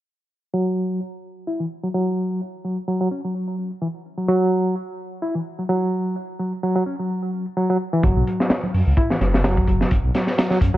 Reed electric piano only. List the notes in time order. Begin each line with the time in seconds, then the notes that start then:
0.54 F#3
1.47 E4
1.60 E3
1.83 F#3
1.94 F#3
2.65 F#3
2.88 F#3
3.01 F#3
3.11 C#4
3.24 F#3
3.82 E3
4.18 F#3
4.28 F#3
5.22 E4
5.35 E3
5.59 F#3
5.69 F#3
6.39 F#3
6.63 F#3
6.76 F#3
6.86 C#4
6.99 F#3
7.57 F#3
7.70 F#3
7.93 E3
8.04 F#3
8.97 E4
9.10 E3
9.34 F#3
9.44 F#3
10.14 F#3
10.38 F#3
10.51 F#3
10.61 C#4
10.74 F#3